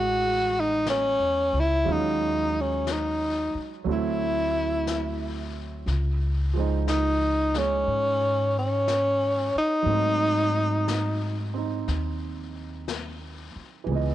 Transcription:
Already playing: A1 E3 G#3 A3 C#4 F#4
0.60 D#4
0.86 C#4, brush sweep, snare, hi-hat pedal
1.20 E2
1.53 C#2
1.60 E4
1.85 D#2 F#3 G#3 C#4 F4, brush sweep
1.92 D#4
2.61 C#4
2.87 brush sweep, snare, hi-hat pedal
2.92 D#4
3.54 muted upright bass stroke
3.84 D2 F#3 A3 C4, brush sweep
3.90 E4
4.87 brush sweep, snare, hi-hat pedal
5.86 C#2, brush sweep, snare
6.53 F3 G#3 C5
6.59 D#4
6.88 D#4, brush sweep, snare, hi-hat pedal
7.54 G#3 C#4, snare
7.58 C#4
7.87 G#2, brush sweep
8.59 C#4
8.88 brush sweep, snare, hi-hat pedal
9.55 D#4, muted upright bass stroke
9.82 G#2 F#3 A3
9.88 C4, brush sweep
9.93 D#4
10.88 brush sweep, snare, hi-hat pedal
11.54 C4 D#4
11.88 D#2, brush sweep, snare
12.88 brush sweep, snare, hi-hat pedal
13.56 muted upright bass stroke
13.84 C#2 E3 G#3, brush sweep
13.91 B3 D#5

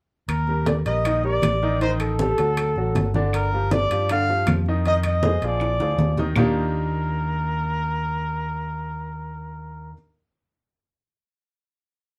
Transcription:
0.28 D#2 A#4, high conga, high timbale, claves
0.47 G3 G4 A#4, high conga
0.66 D5, high conga, high timbale, low timbale
0.86 A#1 G3 G4 A#4 D#5, high conga, high timbale
1.04 D#3 D#4 D#5, high conga, high timbale, claves
1.24 G3 G4 A#4 D5, high conga
1.42 A1, high conga, high timbale, low timbale, claves
1.63 D#3 D#4 D#5, high conga
1.81 D#3 D#4 C5 D#5, high conga, high timbale
2.00 A4, high conga, high timbale, claves
2.19 G3 G4 A4, high conga, low timbale
2.38 D2 F#3 F#4 A4, high conga, high timbale
2.57 high conga, high timbale, claves
2.76 A1 F#3 F#4 A4, high conga
2.95 G1, high conga, high timbale, low timbale
3.14 D3 D4 D5, high conga
3.33 A#4, high conga, high timbale, claves
3.52 F3 F4 G4, high conga
3.71 D5, high conga, high timbale, low timbale
3.90 G2 F3 F4 G4, high conga, high timbale
4.09 D3 D4 D5 F5, high conga, high timbale, claves
4.28 F3 F4 G4, high conga
4.47 F2, high conga, high timbale, low timbale, claves
4.66 D#3 D#4 D#5, high conga
4.85 D#3 D#4 D#5, high conga, high timbale
5.03 D#5, high conga, high timbale, claves
5.23 G#3 G#4 C5, high conga, low timbale
5.42 A#1 F3 F4 G#4 D5, high conga, high timbale
5.60 high conga, high timbale, claves
5.80 D2 F3 F4 G#4, high conga, high timbale
5.98 D#2, high conga, low timbale
6.17 D#3 D#4 D#5, high conga, low timbale
6.36 D#2 D#3 A#3 D4 D#4 F4 G4 A#4, low conga, low timbale, claves

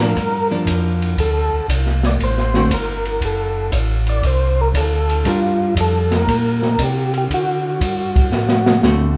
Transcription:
Already playing: A2 A#4
0.01 F3 A#3 D4
0.16 G2, kick, ride
0.51 F3 A#3 D4
0.66 F2, kick, hi-hat pedal, ride
1.02 ride
1.17 D2 A4, kick, ride
1.52 D2
1.68 C2, kick, hi-hat pedal, ride
1.86 snare
2.03 D5, snare, ride
2.19 A1, kick, ride
2.24 C5
2.38 snare
2.54 D3 A3 C4 F#4, snare
2.70 G1 A#4, kick, hi-hat pedal, ride
3.05 ride
3.21 F#1, kick, ride
3.25 A4
3.72 A1, kick, hi-hat pedal, ride
4.07 D5, ride
4.23 C2, kick, ride
4.27 C5
4.61 A#4
4.74 D2 A4, kick, hi-hat pedal, ride
5.09 ride
5.25 G2 G3 D4 F4 A#4, kick, ride
5.76 F2, kick, hi-hat pedal, ride
5.80 A4
6.11 snare, ride
6.16 A#4
6.27 A#2, kick, ride
6.62 snare
6.78 C3, kick, hi-hat pedal, ride
6.83 G4
7.14 G4, ride
7.30 D3, kick, ride
7.34 F#4
7.80 G2, kick, hi-hat pedal, ride
8.16 kick, ride
8.32 A2, snare
8.49 snare
8.66 snare
8.82 D2 D3 A3 C4 F#4, snare, hi-hat pedal

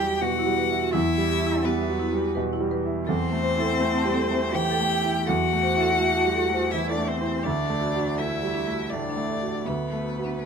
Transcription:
Already playing: E2 F#3 G3 E4 G4 G5
0.03 G4
0.21 B2 F#4 B4 F#5
0.39 E4
0.46 G3
0.58 B4
0.70 E4
0.92 E2 E4 E5
1.18 G3
1.29 G4
1.41 E4
1.46 E4
1.63 G3 B3 B4
1.82 E5
1.89 F#3
1.99 E4
2.13 G3
2.17 G4
2.35 B2 B4
2.53 E4
2.60 G3
2.71 B4
2.85 E4
3.06 E2 C4 A4 C5
3.32 A3
3.43 C5
3.57 E4 A4
3.79 A3 E5
3.96 A5
4.05 G3
4.14 A4
4.31 A3 C5
4.52 E3 G4 E5 G5
4.71 A4
4.80 A3
4.89 E5
5.04 E4
5.26 E2 F#4 A4 F#5
5.53 A3
5.63 C5
5.76 E4
5.80 A4
5.99 A3 E5
6.16 A5
6.25 G3
6.35 A4
6.49 A3
6.53 C5
6.70 E3 E4 E5
6.88 D4 A4 D5
6.98 A3
7.07 C4 C5 E5
7.21 E4
7.43 D2 D4 D5
7.70 A3
7.80 F#4
7.94 F#4
7.98 D4
8.17 A3 E4 A4 E5
8.35 D5
8.43 G3
8.54 D4
8.67 A3
8.72 F#4
8.90 A2 D4 A4 D5
9.10 D4
9.16 A3
9.28 A4
9.42 F#4
9.66 D2 B3 D4 B4
9.93 A3
10.04 F#4
10.18 F#4
10.24 D4

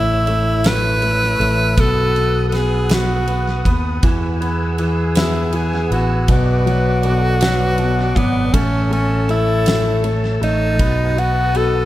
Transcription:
Already playing: A1 A3 E4 C#5 E5 E6
0.27 A3, ride
0.64 A3 B4, snare, ride
1.02 A3, ride
1.40 A1 A3, ride
1.77 B1 B3 F#4 A4 B4 F#5 D#6, kick, ride
2.16 B3, ride
2.49 B3 A4, ride
2.54 G#4, snare
2.89 B3 F#4, snare, ride
3.27 B3, ride
3.65 D#2 B3, kick, ride
4.03 E2 E3 G#4 G#5 E6, kick, ride
4.41 B3, ride
4.78 E3, ride
5.15 B3 E4, snare, ride
5.53 E3 G#4, ride
5.91 A1 B3 F#4, ride
6.28 B1 B2 F#4 B4 D5 D6, kick, ride
6.66 F#3, ride
7.03 B2 A4, ride
7.41 F#3 B4, snare, ride
7.78 B2, ride
8.16 G#1 F#3 B3, kick, ride
8.54 A1 A3 C#4 A4 C#5 A5 E6, kick, ride
8.91 A3 C#4, ride
9.29 A3 E4, ride
9.66 A3, snare, ride
10.04 A3, ride
10.41 A1 A3 D#4, ride
10.73 F4
10.79 B1 B3 F#4 B4 F#5 D#6, kick, ride
11.16 F#4, ride
11.54 B3 A4, ride

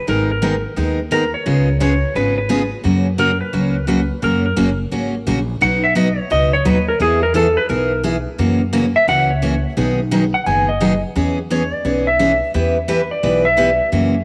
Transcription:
0.07 G#1 D#3 G#3 B3 D#4 A#4
0.32 A#4
0.42 D#3 G#3 B3 D#4 A#4
0.76 D#2 D#3 G#3 B3 D#4 A#4
1.11 D#3 G#3 B3 D#4 A#4
1.34 C#5
1.46 C#2 C#3 G#3 B3 F4 G#4
1.80 C#3 G#3 B3 F4 G#4 C#5
2.15 G#1 C#3 G#3 B3 F4 G#4 B4
2.38 B4
2.49 C#3 G#3 B3 F4 G#4
2.84 F#2 C#3 F#3 A#3 C#4 F#4
3.18 C#3 F#3 A#3 C#4 F#4 A#4
3.41 B4
3.53 C#2 C#3 F#3 A#3 C#4 F#4
3.87 C#3 F#3 A#3 C#4 F#4 B4
4.22 F#2 C#3 F#3 A#3 C#4 F#4 A#4
4.45 A#4
4.56 F#1 C#3 F#3 A#3 C#4 F#4
4.91 G#1 C#3 F#3 A#3 C#4 F#4
5.27 A#1 C#3 F#3 A#3 C#4 F#4
5.61 B1 B2 F#3 B3 D#4 F#4 F#5
5.84 E5
5.95 B2 F#3 B3 D#4 F#4 D#5
6.18 C#5
6.30 C#2 B2 F#3 B3 D#4 F#4 D#5
6.53 C#5
6.65 D#2 B2 F#3 B3 D#4 F#4 B4
6.88 A#4
7.00 E2 E3 B3 E4 G#4
7.23 A#4
7.34 E3 B3 E4 G#4 A4
7.57 B4
7.69 B1 E3 B3 E4 G#4 A#4
8.03 E3 B3 E4 G#4
8.38 F#2 C#3 E3 A#3 C#4 F#4
8.73 C#3 E3 A#3 C#4 F#4
8.96 E5
9.07 C#2 C#3 E3 A#3 C#4 F#4 F#5
9.31 C#5
9.42 C#3 E3 A#3 C#4 F#4
9.77 B1 B2 D#3 F#3 B3 D#4 G#4
10.11 B2 D#3 F#3 B3 D#4 G#4
10.34 F#5
10.46 F#1 B2 D#3 F#3 B3 D#4 G#4 G#5
10.69 D#5
10.80 B2 D#3 F#3 B3 D#4 G#4
11.16 E2 E3 B3 C#4 G#4
11.50 E3 B3 C#4 G#4 C#5
11.73 D5
11.85 B1 E3 B3 C#4 G#4
12.07 E5
12.19 E3 B3 C#4 G#4
12.54 E2 E3 B3 E4 G4 B4
12.88 E3 B3 E4 G4 B4
13.11 D5
13.23 B1 E3 B3 E4 G4 B4
13.45 E5
13.57 E3 B3 E4 G4 B4
13.92 F#2 C#3 E3 A#3 C#4 F#4

